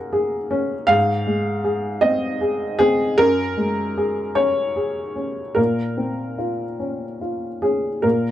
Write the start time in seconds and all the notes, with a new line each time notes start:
Already playing: F#2 A#3 G#4 A#4 F#5
0.13 G#4
0.51 C#4
0.87 G#2 F5
1.27 G#3
1.64 G#4
2.01 C4 D#5
2.41 G#4
2.79 C4 G#4
3.18 F#2 A#4
3.57 G#3
3.97 G#4
4.35 C#4 C#5
4.76 G#4
5.16 C#4
5.55 A#2 A#4
5.97 C4
6.38 F4
6.80 C#4
7.21 F4
7.62 C#4 G#4
8.02 A#2 A#4